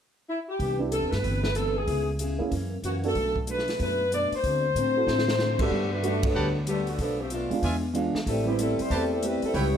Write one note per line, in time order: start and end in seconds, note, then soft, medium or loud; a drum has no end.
0.29 0.38 E4 medium
0.49 0.78 G4 medium
0.59 0.99 C2 medium
0.59 0.81 C3 soft
0.59 0.82 E3 soft
0.59 0.82 B3 soft
0.59 0.83 D4 soft
0.59 kick soft
0.59 open hi-hat soft
0.79 0.90 B3 medium
0.79 0.90 D4 soft
0.79 0.91 E4 medium
0.79 0.91 G4 medium
0.92 1.13 C3 medium
0.92 1.13 E3 soft
0.92 1.13 B3 soft
0.92 1.14 D4 medium
0.92 1.11 A4 medium
0.92 closed hi-hat soft
1.02 1.12 E2 medium
1.11 1.22 G2 medium
1.11 1.42 B4 medium
1.11 snare soft
1.11 open hi-hat soft
1.23 1.84 G1 medium
1.23 1.45 C3 soft
1.23 1.45 E3 soft
1.23 1.46 B3 soft
1.23 1.46 D4 soft
1.23 kick soft
1.23 open hi-hat soft
1.44 1.55 B4 medium
1.44 snare soft
1.55 1.77 C3 medium
1.55 1.77 E3 soft
1.55 1.78 B3 medium
1.55 1.78 D4 medium
1.55 1.74 A4 medium
1.55 closed hi-hat soft
1.77 2.08 G#4 medium
1.87 2.36 C#2 medium
1.87 2.09 C#3 soft
1.87 2.09 B3 soft
1.87 2.10 E4 soft
1.87 2.10 G#4 soft
1.87 kick soft
1.87 open hi-hat soft
2.19 2.41 C#3 medium
2.19 2.41 B3 medium
2.19 2.41 E4 medium
2.19 2.42 G#4 medium
2.19 closed hi-hat soft
2.39 2.51 F2 medium
2.39 2.50 A#3 medium
2.39 2.50 C#4 soft
2.39 2.50 E4 medium
2.39 2.51 G#4 medium
2.51 2.73 F#2 soft
2.51 2.81 F#2 medium
2.51 2.73 E3 soft
2.51 2.74 A#3 soft
2.51 2.74 C#4 soft
2.51 kick soft
2.51 open hi-hat soft
2.83 3.13 F#2 medium
2.83 3.05 F#2 medium
2.83 3.05 E3 medium
2.83 3.06 A#3 medium
2.83 3.06 C#4 medium
2.83 2.94 F#4 medium
2.83 closed hi-hat soft
3.04 3.14 B3 medium
3.04 3.15 D4 medium
3.04 3.15 F#4 medium
3.04 3.15 A4 medium
3.04 3.35 A4 medium
3.04 open hi-hat soft
3.15 3.76 B1 medium
3.15 3.37 B2 soft
3.15 3.37 A3 soft
3.15 3.38 D4 medium
3.15 3.39 F#4 soft
3.15 kick soft
3.15 open hi-hat soft
3.36 kick soft
3.47 3.69 B2 medium
3.47 3.69 A3 medium
3.47 3.69 D4 medium
3.47 3.70 F#4 medium
3.47 3.79 B4 medium
3.47 closed hi-hat soft
3.59 snare soft
3.68 snare soft
3.68 open hi-hat soft
3.79 4.28 F#2 medium
3.79 4.01 B2 soft
3.79 4.01 A3 soft
3.79 4.02 D4 soft
3.79 4.02 F#4 soft
3.79 4.11 B4 medium
3.79 kick soft
3.79 open hi-hat soft
4.12 4.33 B2 medium
4.12 4.33 A3 medium
4.12 4.33 D4 medium
4.12 4.34 F#4 medium
4.12 4.32 D5 medium
4.12 closed hi-hat soft
4.32 muted upright bass stroke soft
4.32 open hi-hat soft
4.36 5.62 C5 medium
4.43 4.73 D2 medium
4.43 4.65 D3 soft
4.43 4.65 A3 soft
4.43 4.66 C4 soft
4.43 4.66 F#4 soft
4.43 kick soft
4.43 open hi-hat soft
4.75 5.05 A2 medium
4.75 4.97 D3 medium
4.75 4.97 A3 medium
4.75 4.97 C4 medium
4.75 4.98 F#4 medium
4.75 closed hi-hat soft
4.96 5.06 C4 soft
4.96 5.06 E4 soft
4.96 5.07 F#4 soft
4.96 5.07 A4 medium
5.07 5.68 A2 medium
5.07 5.28 D3 soft
5.07 5.29 A3 medium
5.07 5.29 C4 soft
5.07 5.30 F#4 medium
5.07 snare soft
5.18 snare soft
5.28 snare medium
5.38 5.60 D3 medium
5.38 5.60 A3 medium
5.38 5.61 C4 medium
5.38 5.61 F#4 medium
5.38 snare soft
5.59 5.70 G2 medium
5.59 5.90 D3 medium
5.59 5.90 A3 medium
5.59 5.70 B3 medium
5.59 5.90 B3 medium
5.59 5.70 D4 soft
5.59 5.71 F#4 medium
5.59 5.90 G4 medium
5.59 5.71 A4 medium
5.59 kick medium
5.59 crash medium
5.70 6.32 G2 medium
5.70 5.92 G3 soft
5.70 5.92 B3 soft
5.70 5.93 F#4 soft
5.70 5.93 A4 soft
5.70 kick soft
5.94 6.04 A3 medium
5.94 6.04 D4 medium
5.94 6.04 F#4 medium
5.94 6.04 B4 medium
6.02 6.24 G3 soft
6.02 6.51 A3 medium
6.02 6.23 A3 medium
6.02 6.51 B3 medium
6.02 6.24 B3 soft
6.02 6.51 D4 soft
6.02 6.23 D4 medium
6.02 6.25 F#4 medium
6.02 6.51 F#4 medium
6.02 6.23 F#4 medium
6.02 6.25 A4 medium
6.02 6.23 B4 medium
6.02 closed hi-hat soft
6.23 6.57 F#3 medium
6.23 6.56 B3 medium
6.23 6.56 D4 medium
6.23 6.56 A4 medium
6.23 kick medium
6.23 ride medium
6.34 6.95 D2 medium
6.34 6.56 G3 soft
6.34 6.56 B3 soft
6.34 6.57 F#4 soft
6.34 6.48 G4 medium
6.34 6.58 A4 soft
6.34 6.48 B4 medium
6.34 6.48 F#5 medium
6.34 6.48 A5 medium
6.67 6.86 D3 medium
6.67 6.88 G3 medium
6.67 6.86 A3 medium
6.67 6.89 B3 medium
6.67 6.86 B3 medium
6.67 6.89 F#4 medium
6.67 6.86 G4 medium
6.67 6.89 A4 medium
6.67 closed hi-hat medium
6.87 7.00 D3 medium
6.87 7.00 A3 medium
6.87 6.99 B3 medium
6.87 7.00 F#4 medium
6.87 open hi-hat soft
6.99 7.47 B1 medium
6.99 7.20 B2 soft
6.99 7.18 F3 medium
6.99 7.21 A3 soft
6.99 7.18 B3 medium
6.99 7.18 D4 medium
6.99 7.21 D4 soft
6.99 7.22 F4 soft
6.99 7.19 A4 medium
6.99 kick soft
6.99 open hi-hat soft
7.21 7.32 F3 medium
7.21 7.31 A3 medium
7.21 7.32 C4 medium
7.21 7.32 G4 medium
7.30 7.53 B2 medium
7.30 7.61 A3 medium
7.30 7.53 A3 medium
7.30 7.61 B3 medium
7.30 7.61 D4 medium
7.30 7.53 D4 medium
7.30 7.61 F4 medium
7.30 7.54 F4 medium
7.30 closed hi-hat medium
7.50 7.61 G#3 soft
7.50 7.61 B3 soft
7.50 7.62 D4 soft
7.50 7.62 F4 medium
7.50 muted upright bass stroke soft
7.50 open hi-hat soft
7.62 8.11 E2 medium
7.62 7.84 E3 soft
7.62 7.85 G#3 soft
7.62 7.85 D4 soft
7.62 7.76 F4 medium
7.62 7.86 F4 soft
7.62 7.76 D5 medium
7.62 7.76 E5 medium
7.62 7.76 G#5 medium
7.62 kick soft
7.62 open hi-hat soft
7.94 8.16 E3 medium
7.94 8.12 G#3 medium
7.94 8.16 G#3 medium
7.94 8.12 B3 soft
7.94 8.13 D4 soft
7.94 8.17 D4 medium
7.94 8.13 F4 medium
7.94 8.17 F4 medium
7.94 closed hi-hat soft
8.15 muted upright bass stroke soft
8.15 snare soft
8.25 8.75 A1 medium
8.25 8.46 G3 medium
8.25 8.47 A3 medium
8.25 8.48 C4 soft
8.25 8.46 C4 medium
8.25 8.46 E4 medium
8.25 8.48 G4 soft
8.25 8.46 A4 medium
8.25 8.49 B4 soft
8.25 kick soft
8.25 open hi-hat soft
8.45 8.58 E3 medium
8.45 8.87 G3 medium
8.45 8.88 B3 medium
8.45 8.59 B3 medium
8.45 8.88 C4 medium
8.45 8.58 C4 medium
8.45 8.88 E4 medium
8.45 8.59 G4 medium
8.59 8.78 G3 medium
8.59 8.80 A3 medium
8.59 8.80 C4 medium
8.59 8.78 C4 medium
8.59 8.79 E4 medium
8.59 8.81 G4 medium
8.59 8.78 A4 medium
8.59 8.81 B4 medium
8.59 closed hi-hat soft
8.79 8.92 G3 medium
8.79 8.92 B3 medium
8.79 8.92 E4 medium
8.79 8.92 C5 medium
8.79 muted upright bass stroke soft
8.79 open hi-hat soft
8.90 9.39 E2 medium
8.90 9.12 A3 soft
8.90 9.12 C4 soft
8.90 9.04 G4 medium
8.90 9.13 G4 soft
8.90 9.04 B4 medium
8.90 9.13 B4 medium
8.90 9.04 C5 medium
8.90 9.04 A5 medium
8.90 kick soft
8.90 open hi-hat soft
8.94 9.12 G3 medium
8.94 9.12 C4 medium
8.94 9.12 E4 medium
8.94 9.12 A4 medium
9.13 9.23 G3 medium
9.13 9.23 C4 medium
9.13 9.23 E4 medium
9.13 9.23 A4 medium
9.23 9.44 G3 medium
9.23 9.44 A3 medium
9.23 9.44 C4 medium
9.23 9.44 E4 medium
9.23 9.44 G4 medium
9.23 9.45 B4 medium
9.23 9.44 B4 medium
9.23 closed hi-hat soft
9.42 9.55 G3 medium
9.42 9.55 C4 medium
9.42 9.55 E4 medium
9.42 9.55 A4 medium
9.42 muted upright bass stroke soft
9.42 open hi-hat soft
9.54 9.77 C#2 medium
9.54 9.75 C#3 soft
9.54 9.76 G3 soft
9.54 9.76 B3 soft
9.54 9.77 B3 medium
9.54 9.68 E4 medium
9.54 9.77 E4 medium
9.54 9.77 G4 medium
9.54 9.67 B4 medium
9.54 9.67 C#5 medium
9.54 9.77 C#5 loud
9.54 9.68 G5 medium
9.54 kick soft
9.54 open hi-hat soft
9.58 9.77 E4 medium
9.74 9.77 G3 medium